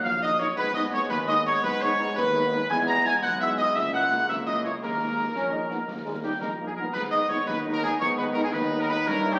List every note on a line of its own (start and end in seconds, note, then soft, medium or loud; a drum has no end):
0.00 0.54 F#3 medium
0.00 0.55 A#3 medium
0.00 0.20 F5 loud
0.04 0.49 A#1 medium
0.04 0.21 F5 loud
0.04 0.11 F6 loud
0.04 concert bass drum medium
0.04 snare medium
0.22 0.29 F#3 medium
0.22 0.29 A#3 medium
0.22 0.29 D#4 medium
0.22 0.39 D#5 loud
0.22 0.40 D#6 loud
0.39 0.46 F#3 medium
0.39 0.46 A#3 medium
0.39 0.46 D#4 medium
0.39 0.57 C#5 loud
0.39 0.48 C#5 loud
0.39 0.47 C#6 loud
0.39 snare medium
0.56 1.02 G#2 loud
0.56 2.66 G#3 medium
0.56 2.65 B3 loud
0.56 0.74 B4 loud
0.56 0.75 B4 loud
0.56 0.65 B5 loud
0.56 concert bass drum medium
0.56 snare medium
0.56 crash soft
0.75 0.82 G#3 medium
0.75 0.82 B3 medium
0.75 0.82 D#4 medium
0.75 0.92 D#5 loud
0.75 0.83 D#5 loud
0.75 0.83 D#6 loud
0.91 1.00 G#3 medium
0.91 1.00 B3 medium
0.91 1.00 D#4 medium
0.91 1.10 C#5 loud
0.91 1.02 C#5 loud
0.91 1.01 C#6 loud
1.10 1.55 D#2 loud
1.10 1.28 B4 loud
1.10 1.18 B4 loud
1.10 1.31 B5 loud
1.10 concert bass drum medium
1.10 snare medium
1.28 1.35 G#3 medium
1.28 1.35 B3 medium
1.28 1.35 D#4 medium
1.28 1.45 D#5 loud
1.28 1.47 D#6 loud
1.46 1.53 G#3 medium
1.46 1.53 B3 medium
1.46 1.53 D#4 medium
1.46 1.54 C#5 loud
1.46 1.63 C#5 loud
1.46 1.53 C#6 loud
1.46 snare medium
1.63 2.08 G#2 loud
1.63 1.81 B4 loud
1.63 1.73 B4 loud
1.63 1.71 B5 loud
1.63 concert bass drum medium
1.63 snare medium
1.81 1.89 G#3 medium
1.81 1.89 B3 medium
1.81 1.89 D#4 medium
1.81 2.17 C#5 loud
1.81 2.16 C#5 loud
1.81 2.16 C#6 loud
1.99 2.06 G#3 medium
1.99 2.06 B3 medium
1.99 2.06 D#4 medium
1.99 snare medium
2.16 2.61 D#2 loud
2.16 2.66 B4 loud
2.16 2.67 B4 loud
2.16 2.73 B5 loud
2.16 concert bass drum medium
2.16 snare medium
2.35 2.41 G#3 medium
2.35 2.41 B3 medium
2.35 2.41 D#4 medium
2.51 2.58 G#3 medium
2.51 2.58 B3 medium
2.51 2.58 D#4 medium
2.51 snare medium
2.69 3.15 E2 loud
2.69 4.78 G#3 loud
2.69 3.72 B3 loud
2.69 2.78 G#5 loud
2.69 2.79 G#5 loud
2.69 2.88 G#6 loud
2.69 concert bass drum medium
2.69 snare medium
2.69 crash soft
2.88 2.94 G#3 medium
2.88 2.95 B3 medium
2.88 2.95 E4 medium
2.88 3.04 A#5 loud
2.88 3.08 A#6 loud
3.05 3.11 G#3 medium
3.05 3.11 B3 medium
3.05 3.11 E4 medium
3.05 3.14 G#5 loud
3.05 3.25 G#6 loud
3.23 3.67 B1 loud
3.23 3.40 F#5 loud
3.23 3.41 F#6 loud
3.23 concert bass drum medium
3.23 snare medium
3.41 3.48 G#3 medium
3.41 3.47 B3 medium
3.41 3.48 E4 medium
3.41 3.49 E5 loud
3.41 3.58 E6 loud
3.58 3.65 G#3 medium
3.58 3.65 B3 medium
3.58 3.65 E4 medium
3.58 3.75 D#5 loud
3.58 3.67 D#5 loud
3.58 3.66 D#6 medium
3.58 snare medium
3.75 4.20 C#2 loud
3.75 5.32 A#3 medium
3.75 3.92 E5 loud
3.75 3.94 E5 loud
3.75 3.82 E6 loud
3.75 concert bass drum medium
3.75 snare medium
3.94 4.01 G#3 medium
3.94 4.00 A#3 medium
3.94 4.00 E4 medium
3.94 4.29 F#5 loud
3.94 4.27 F#5 loud
3.94 4.28 F#6 loud
4.12 4.19 G#3 medium
4.12 4.19 A#3 medium
4.12 4.19 E4 medium
4.12 snare medium
4.29 4.73 C#2 medium
4.29 4.37 E5 loud
4.29 4.47 E5 medium
4.29 4.35 E6 medium
4.29 concert bass drum medium
4.29 snare medium
4.47 4.54 G#3 medium
4.47 4.54 A#3 medium
4.47 4.54 E4 medium
4.47 4.64 D#5 loud
4.47 4.65 D#5 medium
4.47 4.63 D#6 medium
4.63 4.70 G#3 medium
4.63 4.71 A#3 medium
4.63 4.70 E4 medium
4.63 4.73 C#5 medium
4.63 4.71 C#6 medium
4.63 snare medium
4.81 5.27 D#2 medium
4.81 5.28 G#3 medium
4.81 6.73 A#4 medium
4.81 6.21 A#4 loud
4.81 5.99 A#5 medium
4.81 concert bass drum medium
4.81 snare medium
4.81 crash soft
4.99 5.06 G#3 medium
4.99 5.06 A#3 medium
4.99 5.06 D#4 medium
5.17 5.24 G#3 medium
5.17 5.24 A#3 medium
5.17 5.24 D#4 medium
5.34 5.80 A#1 medium
5.34 5.51 C#4 loud
5.34 concert bass drum medium
5.34 snare medium
5.51 5.59 G#3 medium
5.51 5.58 A#3 medium
5.51 5.70 D#4 medium
5.51 5.59 D#4 medium
5.69 5.77 G#3 medium
5.69 5.77 A#3 medium
5.69 5.78 B3 medium
5.69 5.77 D#4 medium
5.69 snare medium
5.87 6.33 D#2 medium
5.87 5.96 A#3 medium
5.87 concert bass drum medium
5.87 snare medium
6.05 6.13 G3 medium
6.05 6.13 G#3 medium
6.05 6.12 A#3 medium
6.05 6.12 D#4 medium
6.23 6.31 G3 medium
6.23 6.33 G3 medium
6.23 6.31 A#3 medium
6.23 6.30 D#4 medium
6.23 6.32 G4 medium
6.23 6.40 G5 medium
6.41 6.86 A#1 medium
6.41 6.50 G#3 medium
6.41 6.54 A#4 medium
6.41 6.66 A#5 medium
6.41 concert bass drum medium
6.41 snare medium
6.60 6.66 G3 medium
6.60 6.68 A#3 medium
6.60 6.67 A#3 medium
6.60 6.66 D#4 medium
6.67 6.72 G#4 medium
6.67 6.73 G#5 medium
6.76 6.83 G3 medium
6.76 6.83 A#3 medium
6.76 6.94 B3 medium
6.76 6.84 D#4 medium
6.76 6.84 A#4 medium
6.76 6.96 A#5 medium
6.93 7.35 G#2 loud
6.93 9.04 D#3 medium
6.93 9.04 B3 medium
6.93 7.45 D#4 medium
6.93 7.02 B4 loud
6.93 7.44 D#5 medium
6.93 7.12 B5 medium
6.93 concert bass drum medium
6.93 snare medium
6.93 crash medium
7.12 7.19 G#3 medium
7.12 7.19 B3 medium
7.12 7.19 D#4 medium
7.12 7.29 D#5 loud
7.12 7.18 D#6 loud
7.29 7.37 G#3 medium
7.29 7.37 B3 medium
7.29 7.37 D#4 medium
7.29 7.46 C#5 loud
7.29 7.37 C#6 loud
7.29 snare medium
7.47 7.92 D#2 medium
7.47 7.98 D#4 loud
7.47 8.50 D#4 loud
7.47 7.60 B4 loud
7.47 8.50 D#5 loud
7.47 7.55 B5 medium
7.47 concert bass drum medium
7.47 snare medium
7.66 7.72 G#3 medium
7.66 7.72 B3 medium
7.66 7.72 D#4 medium
7.74 7.83 A#4 loud
7.74 7.85 A#5 medium
7.82 7.89 G#3 medium
7.82 7.89 B3 medium
7.82 7.89 D#4 medium
7.82 7.92 G#4 loud
7.82 8.00 G#5 medium
7.99 8.45 G#2 loud
7.99 8.50 B3 loud
7.99 8.08 C#5 loud
7.99 8.17 C#6 loud
7.99 concert bass drum medium
7.99 snare medium
8.17 8.24 G#3 medium
8.17 8.24 B3 medium
8.17 8.24 D#4 medium
8.17 8.26 B4 loud
8.17 8.24 B5 medium
8.17 snare medium
8.34 8.42 G#3 medium
8.34 8.42 B3 medium
8.34 8.42 D#4 medium
8.34 8.43 A#4 loud
8.34 8.40 A#5 loud
8.34 snare medium
8.44 8.53 G#4 loud
8.44 8.48 G#5 loud
8.52 8.98 D#2 loud
8.52 9.39 D#4 loud
8.52 9.04 D#4 loud
8.52 8.80 B4 loud
8.52 9.03 D#5 medium
8.52 8.59 B5 loud
8.52 concert bass drum medium
8.52 snare medium
8.70 8.77 G#3 medium
8.70 8.77 B3 medium
8.70 8.77 D#4 medium
8.81 8.89 A#4 loud
8.81 8.87 A#5 loud
8.88 8.95 G#3 medium
8.88 8.96 B3 medium
8.88 8.95 D#4 medium
8.88 9.06 B4 loud
8.88 9.05 B5 loud
9.05 9.39 G2 loud
9.05 9.39 E4 loud
9.05 9.34 A#4 loud
9.05 9.39 C#5 loud
9.05 9.32 A#5 loud
9.05 concert bass drum medium
9.05 snare medium
9.05 crash soft
9.10 9.39 E3 loud
9.10 9.39 C#4 loud
9.25 9.31 A#3 medium
9.25 9.31 C#4 medium
9.25 9.31 E4 medium
9.33 9.39 G4 loud
9.33 9.39 G5 medium